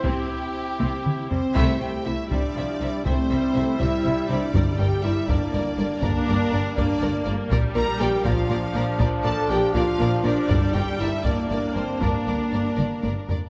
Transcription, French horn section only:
\new Staff \with { instrumentName = "French horn section" } { \time 6/8 \key c \mixolydian \tempo 4. = 80 <c' e'>2~ <c' e'>8 c'8~ | c'8 g'8 e'8 d'4. | c'4. e'4 d'8~ | d'8 g'8 e'8 d'4. |
bes4. d'4 r8 | r8 bes'8 g'8 f'4. | r8 a'8 g'8 f'4 d'8~ | d'8 g'8 e'8 d'8 d'8 c'8 |
bes2~ bes8 r8 | }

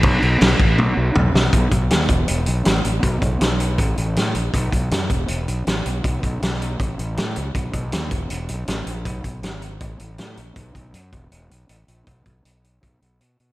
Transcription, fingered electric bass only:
\new Staff \with { instrumentName = "Fingered electric bass" } { \clef bass \time 4/4 \key e \major \tempo 4 = 159 b,,8 b,,8 b,,8 a,,8 b,,8 b,,8 b,,8 b,,8 | b,,8 b,,8 dis,8 e,,8 e,,8 b,,8 a,,8 a,,8 | b,,8 b,,8 b,,4 a,,8 a,,8 a,8 ais,,8 | b,,8 b,,8 fis,8 e,,8 e,,8 b,,8 a,,8 b,,8 |
b,,8 b,,8 b,,4 a,,8 a,,8 a,8 cis,8 | b,,8 b,,8 dis,8 e,,8 e,,8 b,,8 a,,8 ais,,8 | b,,8 b,,8 gis,,4 a,,8 a,,8 a,8 ais,,8 | b,,8 b,,8 fis,8 e,,8 e,,8 b,,8 a,,8 ais,,8 |
b,,8 b,,8 b,,4 b,,8 b,,8 b,8 b,8 | }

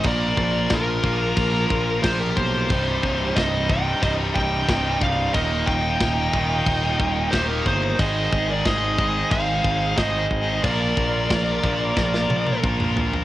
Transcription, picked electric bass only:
\new Staff \with { instrumentName = "Picked electric bass" } { \clef bass \time 4/4 \key bes \mixolydian \tempo 4 = 91 bes,,8 bes,,8 bes,,8 bes,,8 bes,,8 bes,,8 bes,,8 b,,8 | c,,8 c,,8 c,,4 c,,8 c,,8 c,,8 c,,8 | ees,,8 ees,,8 ees,,8 ees,,8 ees,,8 ees,,8 ees,,8 g,,8 | aes,,8 aes,,8 aes,,4 aes,,8 aes,,8 aes,,8 aes,,8 |
bes,,8 bes,,8 bes,,8 bes,,8 bes,,8 bes,,8 bes,,8 bes,,8 | }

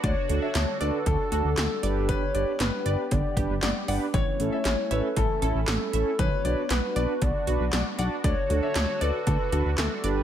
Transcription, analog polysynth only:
\new Staff \with { instrumentName = "Analog polysynth" } { \time 4/4 \key d \major \tempo 4 = 117 r8 <d' fis' a'>8 r8 <d' fis' a'>8 r8 <d' fis' a'>8 r8 <d' g' b'>8~ | <d' g' b'>8 <d' g' b'>8 r8 <d' g' b'>8 r8 <d' g' b'>8 r8 <d' g' b'>8 | r8 <cis' e' a'>8 r8 <cis' e' a'>8 r8 <cis' e' a'>8 r8 <cis' e' a'>8 | r8 <d' fis' b'>8 r8 <d' fis' b'>8 r8 <d' fis' b'>8 r8 <d' fis' d''>8 |
r8 <d' fis' a'>8 r8 <d' fis' a'>8 r8 <d' fis' b'>8 r8 <d' g' b'>8 | }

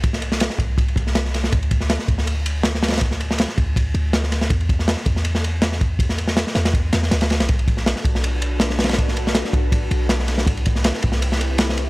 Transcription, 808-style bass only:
\new Staff \with { instrumentName = "808-style bass" } { \clef bass \time 4/4 \key b \phrygian \tempo 4 = 161 c,4~ c,16 r16 c,4 c,4. | d,4~ d,16 r16 d,2~ d,8~ | d,4~ d,16 r16 d,4 d,4. | e,4~ e,16 r16 e,2~ e,8~ |
e,4~ e,16 r16 e,4 e,8 d,8. b,,16 | b,,4~ b,,16 r16 b,,2~ b,,8~ | b,,4~ b,,16 r16 b,,4 b,,4. | c,4~ c,16 r16 c,2~ c,8 | }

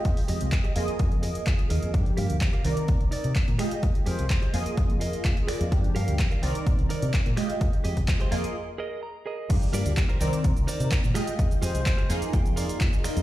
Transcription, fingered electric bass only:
\new Staff \with { instrumentName = "Fingered electric bass" } { \clef bass \time 4/4 \key f \dorian \tempo 4 = 127 f,16 r16 f,16 c,16 r8 f,16 r16 f,8. r8. ees,16 f,16 | g,16 r16 g,16 d,16 r8 c,16 r16 bes,,16 c,16 r16 c16 r16 bes,16 r8 | f,16 r16 f,16 c,16 r8 f,16 r16 f,8. r4 f,16 | g,16 r16 g,16 d,16 r8 c,16 r16 bes,,16 c,16 r16 c16 r16 bes,16 r8 |
f,16 r16 f,16 c,16 r8 f,16 r2 r16 | g,16 r16 g,16 d,16 r8 c,16 r16 bes,,16 c,16 r16 c16 r16 bes,16 r8 | f,16 r16 f,16 c,16 r8 f,16 r16 f,8. r4 f,16 | }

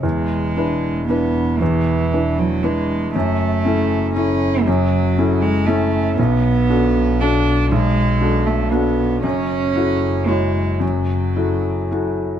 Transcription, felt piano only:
\new Staff \with { instrumentName = "Felt piano" } { \time 3/4 \key fis \minor \tempo 4 = 117 e,4 <d' e' b'>4 <d' e' b'>4 | e,4 <d' e' b'>4 <d' e' b'>4 | fis,4 <cis' e' a'>4 <cis' e' a'>4 | fis,4 <cis' e' a'>4 <cis' e' a'>4 |
b,,4 <d' fis' a'>4 <d' fis' a'>4 | b,,4 <d' fis' a'>4 <d' fis' a'>4 | fis,4 <e' fis' a'>4 <e' fis' cis''>4 | fis,4 <e' fis' a'>4 <e' fis' a'>4 | }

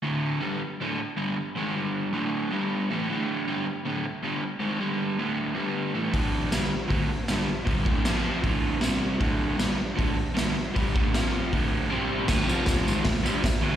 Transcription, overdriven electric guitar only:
\new Staff \with { instrumentName = "Overdriven electric guitar" } { \clef bass \time 4/4 \key g \lydian \tempo 4 = 157 <d, a, d>4 <g, d g>8 r8 <d, a, d>8 r8 <g, d g>8 r8 | <gis, ees gis>8 <g, d g>4 <d, a, d>4 <g, d g>4 <a, e a>8 | <d, a, d>4 <g, d g>8 r8 <d, a, d>8 r8 <g, d g>8 r8 | <gis, ees gis>8 <g, d g>4 <d, a, d>4 <g, d g>4 <a, e a>8 |
<d, a, d>4 <g, d g>8 r8 <d, a, d>8 r8 <g, d g>8 r8 | <g, d g>8 <d, a, d>8 <f, c f>4 <d, a, d>4 <c g c'>4 | <d, a, d>4 <g, d g>8 r8 <d, a, d>8 r8 <g, d g>8 r8 | <g, d g>8 <d, a, d>8 <f, c f>4 <d, a, d>4 <c g c'>4 |
<d, a, d>8 <f, c f>4 <gis, ees gis>8 <d, a,>8 <g, d g>8 r8 <d, a, d>8 | }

